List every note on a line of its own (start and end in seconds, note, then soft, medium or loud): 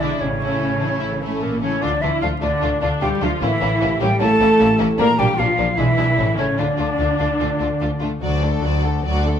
0.00 0.16 B1 soft
0.00 0.22 B2 medium
0.00 0.08 D3 medium
0.00 0.20 G#3 soft
0.00 0.22 B3 soft
0.00 0.20 D4 soft
0.00 0.20 E4 soft
0.00 0.22 G#4 soft
0.00 0.22 D5 soft
0.00 0.22 D5 medium
0.00 0.40 E5 soft
0.20 0.56 A1 soft
0.20 1.84 A2 soft
0.20 1.19 C#3 medium
0.20 1.22 C#4 medium
0.20 1.24 C#5 medium
0.40 0.80 A3 soft
0.40 0.57 E4 soft
0.40 0.80 E4 soft
0.40 1.20 E5 soft
0.60 0.97 A1 soft
0.60 0.68 C#4 soft
0.60 1.40 A4 soft
0.81 1.60 E3 soft
0.81 1.20 A3 soft
0.81 0.89 D4 soft
0.81 1.20 E4 soft
1.00 1.37 A1 soft
1.00 1.08 E4 soft
1.00 1.83 E4 soft
1.21 1.42 A2 soft
1.21 1.61 A3 soft
1.21 1.42 A3 soft
1.21 1.61 C#4 soft
1.21 1.61 E4 soft
1.21 1.44 A4 soft
1.21 1.84 E5 soft
1.41 1.78 A1 soft
1.41 1.62 A#2 soft
1.41 1.62 A#3 soft
1.41 2.20 A4 soft
1.41 1.61 A#4 soft
1.61 1.70 C#3 soft
1.61 1.83 E3 soft
1.61 1.80 A3 soft
1.61 1.82 C#4 soft
1.61 1.82 C#4 medium
1.61 1.82 E4 soft
1.61 1.84 C#5 medium
1.81 1.90 D2 medium
1.81 3.43 D3 soft
1.81 1.90 D3 medium
1.81 1.90 A3 soft
1.81 1.89 D4 soft
1.81 2.02 D4 medium
1.81 1.90 F4 soft
1.81 2.03 D5 medium
2.02 2.10 D2 soft
2.02 2.21 E3 medium
2.02 2.10 A3 soft
2.02 2.10 D4 soft
2.02 2.22 E4 medium
2.02 2.10 F4 soft
2.02 2.80 D5 soft
2.02 2.21 E5 medium
2.21 2.30 D2 soft
2.21 2.29 F3 medium
2.21 2.30 A3 soft
2.21 2.30 D4 soft
2.21 2.42 F4 soft
2.21 2.30 F4 soft
2.21 3.00 A4 soft
2.21 2.28 F5 medium
2.41 2.50 D2 soft
2.41 2.81 D3 medium
2.41 2.50 A3 soft
2.41 3.21 A3 soft
2.41 2.50 D4 soft
2.41 2.81 D4 medium
2.41 2.50 F4 soft
2.41 2.81 D5 medium
2.62 2.70 D2 medium
2.62 2.70 A3 soft
2.62 2.70 D4 soft
2.62 3.43 F4 soft
2.62 2.70 F4 soft
2.81 2.90 D2 medium
2.81 2.90 D3 soft
2.81 2.89 A3 soft
2.81 2.89 D4 soft
2.81 3.02 D4 medium
2.81 2.90 F4 soft
2.81 3.43 D5 soft
2.81 2.88 D5 medium
3.00 3.10 D2 medium
3.00 3.22 G3 medium
3.00 3.08 A3 soft
3.00 3.09 D4 soft
3.00 3.09 F4 soft
3.00 3.22 G4 medium
3.00 5.01 A4 soft
3.00 3.08 G5 medium
3.21 3.29 D2 medium
3.21 3.42 F3 medium
3.21 3.29 A3 medium
3.21 5.01 A3 soft
3.21 3.29 D4 soft
3.21 3.30 F4 soft
3.21 3.42 F4 medium
3.21 3.28 F5 medium
3.41 3.50 A1 medium
3.41 5.01 A2 medium
3.41 4.00 E3 medium
3.41 3.49 A#3 soft
3.41 3.49 C#4 soft
3.41 3.50 E4 medium
3.41 4.02 E4 medium
3.41 4.00 E5 medium
3.61 3.69 A1 medium
3.61 3.69 A#3 medium
3.61 3.69 C#4 medium
3.61 3.70 E4 soft
3.61 4.40 C#5 soft
3.81 3.89 A1 medium
3.81 3.89 A#3 medium
3.81 3.89 C#4 medium
3.81 3.90 E4 soft
3.81 4.59 G4 medium
4.00 4.09 A1 medium
4.00 4.79 E3 soft
4.00 4.21 G3 medium
4.00 4.08 A#3 soft
4.00 4.09 C#4 medium
4.00 4.10 E4 soft
4.00 4.09 G4 medium
4.00 4.20 G5 medium
4.20 4.29 A1 medium
4.20 4.80 A3 medium
4.20 4.28 A#3 medium
4.20 4.28 C#4 medium
4.20 5.01 E4 soft
4.20 4.29 E4 medium
4.20 4.79 A4 medium
4.20 4.79 A5 medium
4.40 4.48 A1 medium
4.40 4.48 A#3 soft
4.40 4.48 C#4 medium
4.40 4.48 E4 medium
4.40 5.01 C#5 soft
4.59 4.68 A1 medium
4.59 4.67 A#3 medium
4.59 4.67 C#4 medium
4.59 4.68 E4 medium
4.59 5.01 G4 soft
4.79 4.88 A1 medium
4.79 5.01 E3 medium
4.79 4.87 A#3 medium
4.79 4.87 C#4 medium
4.79 4.87 E4 medium
4.99 5.07 A#1 medium
4.99 5.79 A#2 medium
4.99 5.07 A#3 medium
4.99 5.07 D4 medium
4.99 5.18 A#4 medium
4.99 5.21 A#5 loud
5.18 5.27 A#1 medium
5.18 5.38 G3 medium
5.18 5.27 A#3 medium
5.18 5.26 D4 soft
5.18 5.27 D4 medium
5.18 5.38 G4 medium
5.18 5.97 D5 soft
5.18 5.40 G5 medium
5.38 5.46 A#1 medium
5.38 5.77 F3 medium
5.38 5.46 A#3 medium
5.38 5.46 D4 soft
5.38 5.46 D4 medium
5.38 5.79 F4 soft
5.38 5.78 F4 medium
5.38 5.80 F5 medium
5.57 5.66 A#1 medium
5.57 5.79 F3 soft
5.57 5.66 A#3 soft
5.57 5.65 D4 soft
5.57 5.66 D4 medium
5.77 5.86 B1 medium
5.77 6.19 B2 medium
5.77 6.36 E3 medium
5.77 5.86 G#3 medium
5.77 5.86 D4 medium
5.77 5.85 E4 soft
5.77 6.37 E4 medium
5.77 6.38 E5 medium
5.97 6.06 B1 medium
5.97 6.06 G#3 soft
5.97 6.06 D4 soft
5.97 6.05 E4 soft
5.97 6.19 G#4 soft
5.97 6.19 D5 soft
6.17 6.26 A1 soft
6.17 6.60 A2 medium
6.17 6.26 A3 soft
6.17 6.26 C#4 soft
6.17 6.26 E4 soft
6.37 6.46 A1 soft
6.37 6.58 C#3 medium
6.37 6.46 A3 soft
6.37 6.58 C#4 medium
6.37 6.46 C#4 soft
6.37 6.46 E4 soft
6.37 6.97 A4 soft
6.37 6.60 C#5 soft
6.37 6.60 C#5 medium
6.57 6.66 D2 soft
6.57 8.20 D3 soft
6.57 8.01 D3 medium
6.57 6.66 A3 soft
6.57 6.67 D4 soft
6.57 8.02 D4 medium
6.57 6.66 F4 soft
6.57 8.01 D5 medium
6.78 6.86 D2 soft
6.78 6.87 A3 soft
6.78 6.87 D4 soft
6.78 6.86 F4 soft
6.98 7.07 D2 soft
6.98 7.08 A3 soft
6.98 7.08 D4 soft
6.98 7.07 F4 soft
6.98 7.79 A4 soft
7.18 7.27 D2 soft
7.18 7.99 A3 soft
7.18 7.28 A3 soft
7.18 7.27 D4 soft
7.18 7.27 F4 soft
7.39 7.48 D2 soft
7.39 7.48 A3 soft
7.39 7.48 D4 soft
7.39 8.23 F4 soft
7.39 7.48 F4 soft
7.60 7.68 D2 soft
7.60 7.68 A3 soft
7.60 7.68 D4 soft
7.60 7.68 F4 soft
7.60 8.51 D5 soft
7.80 7.89 D2 soft
7.80 7.89 A3 soft
7.80 7.89 D4 soft
7.80 7.89 F4 soft
7.80 8.41 A4 soft
8.01 8.09 D2 soft
8.01 9.02 A3 soft
8.01 8.10 A3 soft
8.01 8.10 D4 soft
8.01 8.09 F4 soft
8.21 8.58 D2 medium
8.21 9.40 D3 medium
8.21 8.41 F#3 soft
8.21 8.41 F#4 soft
8.21 8.42 D5 soft
8.31 9.12 F#4 soft
8.42 8.63 A3 soft
8.42 8.63 D4 soft
8.42 9.22 A4 soft
8.42 8.63 A4 soft
8.52 9.33 D5 soft
8.62 8.99 D2 medium
8.62 8.99 D2 soft
8.62 8.84 F#3 soft
8.62 8.84 F#4 soft
8.62 8.84 D5 soft
8.62 9.40 F#5 soft
8.73 8.91 A5 soft
8.82 9.04 A3 soft
8.82 9.04 D4 soft
8.82 9.04 A4 soft
8.82 9.40 D6 soft
8.92 9.40 A5 soft
9.03 9.40 D2 medium
9.03 9.23 F#3 soft
9.03 9.40 A3 soft
9.03 9.23 F#4 medium
9.03 9.24 D5 soft
9.13 9.40 F#4 soft
9.23 9.40 A3 soft
9.23 9.40 D4 soft
9.23 9.40 A4 soft
9.34 9.40 D5 soft